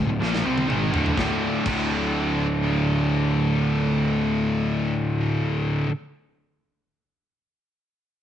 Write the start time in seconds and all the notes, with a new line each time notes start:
Already playing: A3 F4 C5
0.09 D1 D2 A2
0.21 A#1 A#2 F3 A#3, snare
0.35 snare
0.44 C2 C3 G3 C4
0.58 high tom
0.69 G#1 G#2 D#3 G#3, mid tom
0.93 D1 D2 A2 D3, floor tom
1.06 floor tom
1.17 D1 D2 A2 D3 A3 F4 D5, kick, snare
1.65 D1 D2 A2, kick, crash
1.69 D3